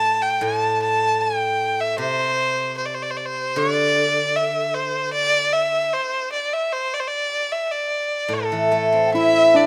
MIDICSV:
0, 0, Header, 1, 5, 480
1, 0, Start_track
1, 0, Tempo, 784314
1, 263, Time_signature, 4, 2, 24, 8
1, 4101, Tempo, 802139
1, 5061, Tempo, 829876
1, 5847, End_track
2, 0, Start_track
2, 0, Title_t, "Dizi"
2, 0, Program_c, 0, 73
2, 5493, Note_on_c, 0, 79, 43
2, 5527, Note_on_c, 0, 76, 73
2, 5536, Note_off_c, 0, 79, 0
2, 5847, Note_off_c, 0, 76, 0
2, 5847, End_track
3, 0, Start_track
3, 0, Title_t, "Erhu"
3, 0, Program_c, 1, 110
3, 0, Note_on_c, 1, 81, 87
3, 132, Note_on_c, 1, 79, 71
3, 141, Note_off_c, 1, 81, 0
3, 259, Note_on_c, 1, 81, 79
3, 269, Note_off_c, 1, 79, 0
3, 497, Note_off_c, 1, 81, 0
3, 501, Note_on_c, 1, 81, 80
3, 741, Note_on_c, 1, 79, 71
3, 750, Note_off_c, 1, 81, 0
3, 1103, Note_on_c, 1, 76, 70
3, 1112, Note_off_c, 1, 79, 0
3, 1212, Note_off_c, 1, 76, 0
3, 1215, Note_on_c, 1, 72, 91
3, 1676, Note_off_c, 1, 72, 0
3, 1698, Note_on_c, 1, 72, 66
3, 1747, Note_on_c, 1, 74, 60
3, 1756, Note_off_c, 1, 72, 0
3, 1800, Note_on_c, 1, 72, 63
3, 1809, Note_off_c, 1, 74, 0
3, 1851, Note_on_c, 1, 74, 66
3, 1860, Note_off_c, 1, 72, 0
3, 1899, Note_on_c, 1, 72, 62
3, 1909, Note_off_c, 1, 74, 0
3, 1938, Note_on_c, 1, 74, 51
3, 1947, Note_off_c, 1, 72, 0
3, 1992, Note_on_c, 1, 72, 71
3, 2001, Note_off_c, 1, 74, 0
3, 2187, Note_on_c, 1, 74, 86
3, 2196, Note_off_c, 1, 72, 0
3, 2666, Note_on_c, 1, 76, 70
3, 2675, Note_off_c, 1, 74, 0
3, 2898, Note_on_c, 1, 72, 70
3, 2907, Note_off_c, 1, 76, 0
3, 3134, Note_off_c, 1, 72, 0
3, 3138, Note_on_c, 1, 74, 88
3, 3380, Note_on_c, 1, 76, 82
3, 3390, Note_off_c, 1, 74, 0
3, 3628, Note_on_c, 1, 72, 75
3, 3638, Note_off_c, 1, 76, 0
3, 3864, Note_off_c, 1, 72, 0
3, 3867, Note_on_c, 1, 74, 66
3, 3995, Note_on_c, 1, 76, 68
3, 4004, Note_off_c, 1, 74, 0
3, 4113, Note_on_c, 1, 72, 79
3, 4122, Note_off_c, 1, 76, 0
3, 4242, Note_on_c, 1, 74, 68
3, 4250, Note_off_c, 1, 72, 0
3, 4279, Note_on_c, 1, 72, 59
3, 4288, Note_off_c, 1, 74, 0
3, 4325, Note_on_c, 1, 74, 71
3, 4334, Note_off_c, 1, 72, 0
3, 4592, Note_on_c, 1, 76, 62
3, 4601, Note_off_c, 1, 74, 0
3, 4709, Note_on_c, 1, 74, 62
3, 4718, Note_off_c, 1, 76, 0
3, 5077, Note_on_c, 1, 69, 65
3, 5086, Note_off_c, 1, 74, 0
3, 5538, Note_off_c, 1, 69, 0
3, 5542, Note_on_c, 1, 76, 86
3, 5789, Note_on_c, 1, 74, 67
3, 5797, Note_off_c, 1, 76, 0
3, 5847, Note_off_c, 1, 74, 0
3, 5847, End_track
4, 0, Start_track
4, 0, Title_t, "Hammered dulcimer"
4, 0, Program_c, 2, 15
4, 5546, Note_on_c, 2, 64, 68
4, 5776, Note_on_c, 2, 62, 53
4, 5847, Note_off_c, 2, 62, 0
4, 5847, Note_off_c, 2, 64, 0
4, 5847, End_track
5, 0, Start_track
5, 0, Title_t, "Guzheng"
5, 0, Program_c, 3, 107
5, 0, Note_on_c, 3, 45, 41
5, 244, Note_off_c, 3, 45, 0
5, 251, Note_on_c, 3, 45, 50
5, 1211, Note_on_c, 3, 48, 47
5, 1222, Note_off_c, 3, 45, 0
5, 2179, Note_on_c, 3, 50, 51
5, 2180, Note_off_c, 3, 48, 0
5, 3613, Note_off_c, 3, 50, 0
5, 5049, Note_on_c, 3, 45, 47
5, 5184, Note_on_c, 3, 52, 38
5, 5298, Note_on_c, 3, 57, 38
5, 5419, Note_on_c, 3, 60, 30
5, 5550, Note_on_c, 3, 64, 36
5, 5847, Note_off_c, 3, 45, 0
5, 5847, Note_off_c, 3, 52, 0
5, 5847, Note_off_c, 3, 57, 0
5, 5847, Note_off_c, 3, 60, 0
5, 5847, Note_off_c, 3, 64, 0
5, 5847, End_track
0, 0, End_of_file